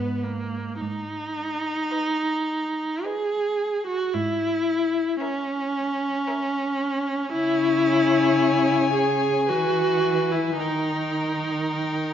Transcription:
Already playing: G#2 B3 B4
0.23 A#3
0.81 G#2 D#4
1.91 B4 D#5
3.05 G#4 B4 D#5
3.87 F#4
4.13 G#2 E4
5.20 C#4 A#4 E5
6.28 A#4 E5
7.32 C#3 E4 C#5 G#5
8.93 G#4
9.49 E3 F#4 B4
10.31 E4
10.58 D#3 D#4 A#4 G5
11.70 G5

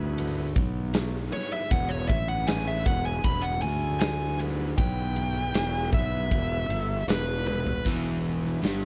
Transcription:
Already playing: D2 B3 E4 G#4 B4
0.18 ride
0.56 B1, kick, ride
0.94 snare, ride
1.30 B3 E4 G#4 B4 C#5, muted fingered electric bass stroke, ride
1.53 E5
1.69 E1 B3 E4 G#4 C#5 F#5, kick, ride
1.89 C#5
2.08 A1 E5, kick, ride
2.27 B3 E4 G#4 B4 F#5
2.47 G#5, snare, ride
2.67 E5
2.86 E1 F#5, kick, ride
3.06 G#5
3.24 E1 B5, kick, ride
3.42 F#5
3.62 D2 G#5, ride
4.00 G#5, snare, ride
4.38 B3 E4 G#4 B4, ride
4.77 B1 B3 E4 G#4 B4 G5, kick, ride
5.16 ride
5.32 B3 E4 G#4 B4
5.54 E1, snare, ride
5.92 B1 E5, kick, ride
6.31 E1, kick, ride
6.69 G1, ride
7.08 E1 B4, snare, ride
7.44 B3 E4 G#4 B4
7.48 high tom
7.66 floor tom
7.81 B3 E4 B4 G#5
7.85 E1 E2 E3, kick, open hi-hat
8.24 open hi-hat
8.45 snare
8.62 G1 G2 G3, snare, open hi-hat

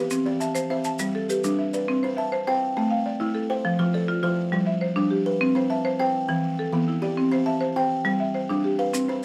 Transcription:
Already playing: G4 B4 C5
0.10 C4, maracas
0.26 C4 D5
0.40 E5 A5, maracas
0.55 C5, maracas
0.70 C4 C5 E5
0.84 A5, maracas
0.99 G3 C4, maracas
1.15 A4
1.29 G4 B4, maracas
1.44 G3 D4, maracas
1.59 E5
1.73 B4 D5, maracas
1.88 C4
2.03 C4 C5
2.17 E5 A5
2.32 C5
2.47 C4 C5 G5
2.77 A3 C4
2.91 F5
3.06 D5
3.20 A3 E4
3.35 A4
3.50 C5 G5
3.65 F3
3.79 F3 F4
3.94 A4 D5
4.08 F4
4.23 F3 F4 C5
4.52 F3 G3
4.66 E5
4.81 C5
4.96 G3 D4
5.10 G4
5.26 B4
5.41 C4
5.55 C4 C5
5.70 E5 A5
5.85 C5
6.00 C4 C5 G5
6.28 E3 C4
6.59 A4
6.73 E3 B3
6.88 E4
7.02 G4 D5
7.17 C4
7.32 C4 C5
7.46 E5 A5
7.61 C5
7.76 C4 C5 G5
8.05 G3 C4
8.20 E5
8.34 C5
8.49 G3 D4
8.64 G4
8.79 B4 F5
8.93 C4, maracas
9.08 C4 C5

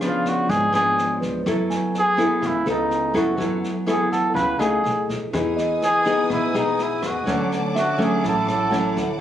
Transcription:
Already playing: C#3 C#5
0.01 F3 B3 D4, cross-stick, snare
0.07 F4
0.25 F#4, kick, snare
0.49 G#1 G#2 G#4, kick, snare
0.72 G#1 F3 B3 D4 G#4, cross-stick, snare
0.98 snare
1.21 C#2 B4, kick, snare
1.46 F#2 F#3 B3 E4 A4, kick, cross-stick, snare
1.70 G#5, snare
1.95 snare
1.99 G#4
2.17 B3 E4 A4, kick, snare
2.41 C#2 C#3, kick, cross-stick, snare
2.47 E4
2.66 C#2 B3 D#4 A4, snare
2.91 snare
3.14 F#2 B3 E4 F#4 A4, kick, cross-stick, snare
3.37 F#2 F#3 B3 E4 A4, kick, snare
3.64 snare
3.86 B3 E4 G#4 A4, cross-stick, snare
4.12 A4 F#5, kick, snare
4.34 C#2 C#3 B4, kick, snare
4.59 C#2 A3 D#4 G#4, cross-stick, snare
4.84 B1, snare
5.09 B1, kick, snare
5.32 E2 E3 B3 D#4 G#4 B4 G#5 D#6, kick, cross-stick, snare
5.57 D#5, snare
5.82 G#4, snare
6.05 B3 D#4 G#4, kick, snare
6.29 B1 B2, kick, cross-stick, snare
6.33 E4
6.54 B1 B3 D#4 G#4, snare
6.58 D#4
6.79 E4, snare
7.02 E2, kick, cross-stick, snare
7.06 F#4
7.26 D2 D3 F#3 A3 C#4 F#5 A5 D6, kick, snare
7.52 snare
7.76 F#4 E5, cross-stick, snare
7.98 F#3 A3 C#4, kick, snare
8.04 G#4
8.23 A1 A2, kick, snare
8.28 A4
8.47 A1 A4, cross-stick, snare
8.71 F#3 A3 C#4 F#5, snare
8.97 D2, kick, snare

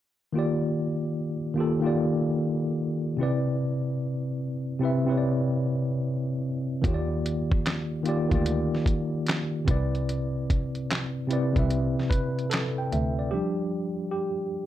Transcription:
0.33 D#3 A#3 F4
0.37 G4 D5
1.54 D#3 A#3 F4
1.59 G4 A4
1.81 D#3 A#3 F4
1.85 G4 D5
3.17 C3 C4 E4
3.21 B4 D5
4.79 C3 C4 E4
4.84 B4 E5
5.05 C3 C4 E4
5.10 B4 C#5
5.18 D5
6.82 D#2 D#3 A#3 F4, kick, closed hi-hat
6.86 G4 C#5
6.94 D5
7.26 closed hi-hat
7.52 kick
7.66 snare, clap, closed hi-hat
8.03 D#3 A#3 F4, closed hi-hat
8.07 G4 D5
8.29 D2 D#3 A#3 F4, kick, closed hi-hat
8.34 G4 D5
8.46 closed hi-hat
8.75 snare
8.86 kick, closed hi-hat
9.27 snare, clap, closed hi-hat
9.65 C2 C3 C4 E4, kick, closed hi-hat
9.69 B4 D5
9.95 closed hi-hat
10.09 closed hi-hat
10.50 kick, closed hi-hat
10.75 closed hi-hat
10.91 snare, clap, closed hi-hat
11.27 C3 C4 E4, closed hi-hat
11.32 B4 D5
11.53 C2 C3 C4 E4, kick, closed hi-hat
11.58 B4 E5
11.70 closed hi-hat
11.99 snare
12.10 B4, kick, closed hi-hat
12.39 closed hi-hat
12.50 A4 A5, snare, clap, closed hi-hat
12.78 G5
12.92 D2 E5, closed hi-hat
13.19 D5
13.31 F3 G3 D4 G4
14.11 G4

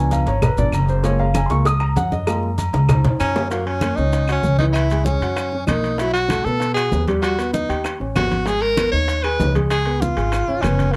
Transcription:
Already playing: C#2 F3 B3 D4 G#5
0.11 F5, cowbell, high conga, low agogo, maracas
0.26 G#1 C#5, cowbell, high conga, low agogo, maracas
0.42 B4, cowbell, high conga, low conga, low agogo, claves, maracas
0.57 G#1 F3 B3 D4 D5, cowbell, high conga, low conga, maracas
0.72 F#1, cowbell, high conga, low agogo, claves, maracas
0.88 C5, high conga, maracas
1.04 G#3 A#3 F4 C#5, cowbell, high conga, low agogo, maracas
1.19 F5, high conga, low agogo
1.34 G#5, cowbell, high conga, low agogo, claves, maracas
1.46 C#2 C6, cowbell
1.51 G#3 A#3 F4 C#6, maracas
1.65 D#6, cowbell, high conga, low agogo, maracas
1.80 A#5, high conga, low agogo, claves
1.96 F#2 F#5, cowbell, high conga, maracas
2.12 D#5, high conga, maracas
2.27 G#3 A#3 F4, cowbell, high conga, low agogo, claves, maracas
2.43 high conga
2.58 cowbell, high conga, low agogo, maracas
2.73 C#2, cowbell, high bongo, high conga, low agogo, maracas
2.89 cowbell, high conga, low conga, high timbale, low agogo, claves, maracas
3.04 F2, cowbell, high bongo, high conga, low conga, high timbale
3.20 F#2 C#4, cowbell, high conga, low agogo, claves, maracas
3.36 low bongo, high conga, low timbale, maracas
3.50 F#3 A#3 F#4, high bongo, high conga, high timbale, maracas
3.66 C#4, high conga, high timbale
3.81 A#3 A#4, high bongo, high conga, high timbale, claves, maracas
3.96 C#2 C#4 D#4 C#5, high bongo, high conga, maracas
4.13 high bongo, high conga, high timbale, maracas
4.28 F#4 F#5, high bongo, high conga, high timbale, claves, maracas
4.32 C#4
4.43 C#2 C#4 C#5, high bongo, low bongo, high conga, maracas
4.58 E3 D#4 E4, high bongo, high conga, high timbale, maracas
4.72 E4, high bongo, high conga, high timbale, claves, maracas
4.90 G#3 G#4, high conga, high timbale, maracas
5.05 C#4, high bongo, high conga, maracas
5.21 F#2 F#4 F#5, high bongo, high timbale, maracas
5.36 high bongo, high conga, high timbale, claves, maracas
5.52 C#4 C#5, high bongo, high conga
5.67 B1 A#3 D#4 A#4, high bongo, low bongo, high conga, high timbale, claves, maracas
5.83 high bongo, high timbale, maracas
5.98 F#3 E4 F#4, high bongo, high conga, high timbale, maracas
6.13 F#4, high conga, high timbale, maracas
6.29 A3 A4, high bongo, high conga, high timbale, claves, maracas
6.45 B2 B3 A4 B4, high bongo, high conga, maracas
6.60 high bongo, high conga, high timbale, maracas
6.74 F#4 G#4 F#5, high bongo, high conga, high timbale, claves, maracas
6.92 D#2 B3 B4, high bongo, low bongo, high conga, low timbale, maracas
7.07 G3 G4, high bongo, high conga, high timbale, maracas
7.22 F#4, high bongo, high conga, high timbale, claves, maracas
7.38 B3 B4, high conga, high timbale, maracas
7.53 D#4, high bongo, high conga, maracas
7.69 D#2 G4 G5, high bongo, high timbale, maracas
7.84 high bongo, high conga, high timbale, claves, maracas
8.00 A1 C#4 C#5, high bongo, high conga
8.15 G#1 B3 F#4 B4, high bongo, low bongo, high conga, high timbale, low timbale, claves, maracas
8.30 high bongo, high conga, high timbale, maracas
8.46 G#3 G#4, high bongo, high conga, high timbale, maracas
8.62 A#4, high conga, high timbale
8.77 B3 B4, high bongo, high conga, high timbale, claves, maracas
8.92 D#2 D#4 C#5 D#5, high bongo, high conga, maracas
9.08 high bongo, high conga, high timbale, maracas
9.23 G#4 B4 G#5, high bongo, high conga, high timbale, claves
9.39 C#2 D#4 D#5, high bongo, low bongo, high conga, low timbale, maracas
9.55 G#3 G#4, high bongo, high conga, high timbale, maracas
9.70 G#4, high bongo, high conga, high timbale, claves, maracas
9.86 B3 B4, high conga, high timbale
10.01 F4, high bongo, high conga, maracas
10.17 G#1 G#4 G#5, high bongo, high timbale, maracas
10.32 high bongo, high conga, high timbale, claves, maracas
10.48 G#1 C#4 C#5, high bongo, high conga
10.62 F#1 B3 C#4 B4, high bongo, low bongo, high conga, high timbale, claves, maracas
10.79 high bongo, high conga, high timbale, maracas
10.92 A#3

